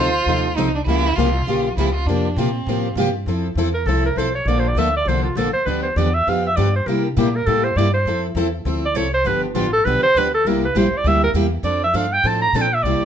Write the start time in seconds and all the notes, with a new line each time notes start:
Already playing: D2 F4 C5
0.26 D#2 C3 F3 C4 D#4 A4
0.56 C2 C3 F3 C4 D#4 A4
0.75 D4
0.85 C#2 C#3 F3 A#3 E4 F4 G4
1.16 C2 C#3 F3 A#3 F4 G4
1.47 A#1 C#3 F3 A#3 F4 G4
1.77 C#2 C#3 F3 A#3 E4 F4 G4
1.95 F4
2.06 F2 C3 F3 D4 G4
2.10 A#3 F4
2.36 A#2 C3 F3 A#3 C4 F4 G4
2.67 A2 C3 F3 A#3 F4 G4
2.95 G2 C3 F3 A#3
2.99 F4 G4
3.26 F2 F3 C4 E4 A4
3.55 E2 F3 C4 E4 A4
3.74 A#4
3.86 C2 F3 C4 E4 A4
4.06 A#4
4.16 B1 F3 C4 E4 A4 C5
4.35 C#5
4.45 A#1 D3 F3 A#3 D4 A4 D5
4.59 C5
4.68 D5
4.75 D2 D3 F3 A#3 D4 A4 E5
4.96 D5
5.05 C2 D3 F3 A#3 D4 C5
5.10 A4
5.24 F4
5.35 A#1 D3 F3 A#3 D4 A4
5.53 C5, muted upright bass stroke
5.66 D2 D3 F3 B3 D4 G4 B4
5.83 C5
5.96 E2 D3 F3 B3 D4 G4 D5
6.14 E5
6.27 F2 D3 F3 B3 D4 G4 F5
6.47 E5
6.57 G2 D3 F3 B3 D4 G4 D5
6.76 C5
6.86 C3 G3 A#3 E4 G4 A#4
7.06 D4
7.17 A#2 C3 G3 A#3 E4 G4
7.36 A#4
7.46 A2 C3 G3 A#3 E4 G4 A4
7.64 C5
7.76 G2 C3 G3 A#3 E4 G4 D5
7.94 C5
8.05 F2 F3 C4 E4 A4
8.35 E2 F3 C4 E4 A4
8.65 D2 F3 C4 E4 A4
8.85 D5
8.94 C2 F3 C4 E4 A4 C#5
9.14 C5
9.24 G1 D3 F3 B3 D4 G4 B4
9.44 D4
9.54 A1 D3 F3 B3 D4 F4 G4
9.73 A4
9.85 B1 D3 F3 B3 D4 G4 B4
10.03 C5
10.15 D2 D3 F3 B3 D4 G4 B4
10.34 A4
10.45 C2 C3 G3 A#3 E4 G4 A#4
10.65 B4
10.75 A#1 C3 G3 A#3 E4 G4 C5
10.93 muted upright bass stroke
10.97 D5
11.04 D2 C3 G3 A#3 E4 G4 E5
11.24 A#4
11.34 E2 C3 G3 A#3 E4 G4
11.63 F2 F3 C4 D4 A4 D5
11.84 E5
11.94 G2 F3 C4 D4 A4 F5
12.13 G5
12.24 A2 F3 C4 D4 A4 A5
12.42 A#5
12.53 A#2 F3 C4 D4 A4 A5
12.62 G5
12.74 E5
12.83 C2 C3 G3 A#3 E4 G4 D5
13.01 muted upright bass stroke